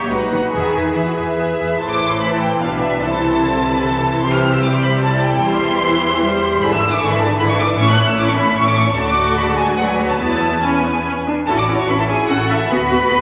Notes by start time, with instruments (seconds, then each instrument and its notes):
Already playing: viola section G4 C#5, violin section E5
0.09 double bass section B1, cello section G#3, violin section D#4 F#5, viola section F#4 B4
0.21 cello section F#3
0.31 double bass section B1, cello section D#3, viola section F#4 B4, violin section F#5
0.52 double bass section E2, cello section D#3, violin section G#4 E5, viola section G#4 B4
0.74 double bass section E2, viola section G#4 B4, violin section E5
0.94 double bass section E2, cello section E3, violin section E4 E5, viola section G#4 B4
1.06 violin section F#4
1.16 double bass section E2, violin section G#4 E5, viola section G#4 B4
1.37 double bass section E2, viola section G#4 B4, violin section E5
1.59 double bass section E2, viola section G#4 B4, violin section E5
1.79 double bass section A1, cello section A2, viola section E3 E4, violin section A4 C5 A5
1.90 violin section D6
2.11 violin section C6
2.21 viola section E4, violin section A4 C5 B5
2.30 violin section A5
2.40 violin section G5
2.60 double bass section B1, cello section B2, viola section D4, violin section B4 D5 F5
2.81 violin section E5
3.02 double bass section C2, cello section C3, viola section E3 E4, violin section A4 C5 A5
3.23 viola section E4
3.42 viola section D3, violin section C5
3.62 violin section B4
3.82 viola section E3, violin section A4 C5
4.03 violin section C5
4.23 double bass section C2, cello section C3, viola section E3 G4, violin section G4 C6
4.32 violin section F6
4.53 violin section E6
4.62 viola section G3 G4, violin section E4 D6
4.73 violin section C6
4.82 violin section B5
5.02 viola section E4, violin section A4 D5 A5
5.23 violin section G5
5.43 double bass section E1, cello section E2, viola section G3 E4, violin section G4 C5 C6
5.64 violin section B4
5.84 viola section E3, violin section C5
6.02 viola section E3
6.22 viola section G3 G4, violin section E4 C5
6.61 double bass section G#1, cello section G#2, viola section D3 E4, violin section G#4 D5 B5
6.71 viola section E3 D4, violin section B4 E5 E6
6.80 viola section D3 E4, violin section G#4 D5
6.90 viola section E3 D4, violin section B4 E5 D6
7.00 double bass section G#1, cello section G#2, viola section D3 E4, violin section G#4 D5 C#6
7.10 viola section E3 D4, violin section B4 E5 B5
7.20 viola section D3 E4, violin section G#4 D5 A5
7.29 viola section E3 D4, violin section B4 E5
7.38 double bass section G#1, cello section G#2, viola section D3 E4, violin section G#4 D5 B5
7.49 viola section E3 D4, violin section B4 E5 C#6
7.58 viola section D3 E4, violin section G#4 D5 D6
7.69 viola section E3 D4, violin section B4 E5
7.78 double bass section A1, cello section A2, viola section C#4 E4, violin section C#5 E5 C#6
7.88 viola section A3 C#4, violin section A4 C#5 F#6
7.98 viola section C#4 E4, violin section C#5 E5
8.08 viola section A3 C#4, violin section A4 C#5 E6
8.18 double bass section A1, cello section A2, viola section C#4 E4, violin section C#5 E5 D6
8.28 viola section A3 C#4, violin section A4 C#5 C#6
8.37 viola section C#4 E4, violin section C#5 E5 B5
8.47 viola section A3 C#4, violin section A4 C#5
8.57 double bass section A1, cello section A2, viola section C#4 E4, violin section C#5 E5 C#6
8.67 viola section A3 C#4, violin section A4 C#5 D6
8.76 viola section C#4 E4, violin section C#5 E5 C#6
8.87 viola section A3 C#4, violin section A4 C#5
8.97 double bass section D2, cello section D2, viola section A3 F#4, violin section A4 D5 A5
9.07 violin section D6
9.28 violin section C#6
9.37 viola section G#3, violin section B5
9.47 violin section A5
9.57 violin section G#5
9.78 viola section F#3 F#4, violin section B4 D5 F#5
9.88 violin section G#5
9.99 violin section C#5
10.09 violin section A5
10.20 double bass section E1, cello section E2, viola section B3 E4, violin section B4 A5
10.63 viola section C#4, violin section B4 G#5
10.84 viola section B3
11.06 viola section C#4
11.27 viola section D4
11.47 double bass section A1, viola section C#4 E4, cello section F#4, violin section A4 A5
11.57 violin section D5 D6
11.68 viola section C#4 E4
11.78 violin section C#5 C#6
11.88 double bass section A1, viola section C#4 E4, cello section E4, violin section B4 B5
11.98 violin section A4 A5
12.08 viola section C#4 E4, violin section G#4 G#5
12.28 double bass section A1, viola section C#4 E4, violin section F#4 F#5, cello section A4
12.49 viola section C#4 E4, violin section E4 E5
12.70 double bass section D2, viola section B3 F#4, cello section F#4, violin section B4 B5
12.90 viola section B3 F#4
13.10 double bass section D2, viola section B3 F#4, cello section B4